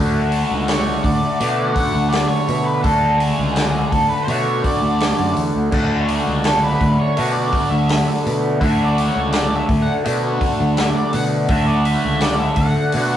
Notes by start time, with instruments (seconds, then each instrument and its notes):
Already playing: fingered electric bass D2, overdriven electric guitar D3 A3, harmonium A3 D4 F#4 F#5
0.00 overdriven electric guitar D4 F#4
0.32 open hi-hat
0.51 fingered electric bass C#2
0.68 lead electric guitar C#5, snare, open hi-hat
1.03 fingered electric bass D2, lead electric guitar D5, kick, open hi-hat
1.40 fingered electric bass B2, overdriven electric guitar D3 A3 D4 F#4, open hi-hat
1.74 lead electric guitar F#5, kick, open hi-hat
1.94 fingered electric bass D2
2.09 lead electric guitar D5, open hi-hat
2.13 snare
2.27 lead electric guitar C#5
2.48 fingered electric bass B2, open hi-hat
2.65 lead electric guitar B4
2.83 fingered electric bass D2, overdriven electric guitar D3 A3 D4, lead electric guitar A4, kick, open hi-hat
2.87 overdriven electric guitar F#4
3.18 lead electric guitar G#4, open hi-hat
3.38 fingered electric bass C#2
3.56 snare, open hi-hat
3.90 fingered electric bass D2, lead electric guitar A4, kick, open hi-hat
4.09 lead electric guitar B4
4.23 lead electric guitar C5
4.27 fingered electric bass B2, overdriven electric guitar D3 A3 D4, lead electric guitar C#5, open hi-hat
4.32 overdriven electric guitar F#4
4.64 lead electric guitar D5, kick, open hi-hat
4.82 fingered electric bass D2
5.00 snare, open hi-hat
5.19 fingered electric bass F#2
5.36 fingered electric bass E2, open hi-hat
5.55 fingered electric bass D2
5.72 fingered electric bass D2, overdriven electric guitar D3 A3 D4 F#4, kick, crash
6.08 open hi-hat
6.27 fingered electric bass C#2
6.44 lead electric guitar A4, snare, open hi-hat
6.62 lead electric guitar B4
6.81 fingered electric bass D2, kick, open hi-hat
6.98 lead electric guitar C#5
7.17 fingered electric bass B2, overdriven electric guitar D3 A3 D4 F#4, open hi-hat
7.32 lead electric guitar D5
7.53 kick, open hi-hat
7.71 fingered electric bass D2, lead electric guitar E5
7.89 snare, open hi-hat
8.26 fingered electric bass B2, open hi-hat
8.60 fingered electric bass D2, overdriven electric guitar D3 A3 D4 F#4, lead electric guitar E5, kick, open hi-hat
8.84 lead electric guitar D5
8.98 open hi-hat
9.07 lead electric guitar C#5
9.16 fingered electric bass C#2
9.32 lead electric guitar D5, snare, open hi-hat
9.56 lead electric guitar E5
9.69 fingered electric bass D2, kick, open hi-hat
9.82 lead electric guitar F#5
10.05 fingered electric bass B2, overdriven electric guitar D3 A3 D4 F#4, open hi-hat
10.41 kick, open hi-hat
10.60 fingered electric bass D2
10.77 lead electric guitar E5, snare, open hi-hat
10.95 lead electric guitar D5
11.13 fingered electric bass B2, lead electric guitar F#5, open hi-hat
11.48 fingered electric bass D2, overdriven electric guitar D3 A3 D4 F#4, lead electric guitar E5, kick, open hi-hat
11.66 lead electric guitar D5
11.85 lead electric guitar E5, open hi-hat
12.05 fingered electric bass C#2
12.21 lead electric guitar D5, snare, open hi-hat
12.40 lead electric guitar E5
12.56 fingered electric bass D2, lead electric guitar F#5, kick, open hi-hat
12.92 fingered electric bass B2, overdriven electric guitar D3 A3, open hi-hat
12.97 overdriven electric guitar D4 F#4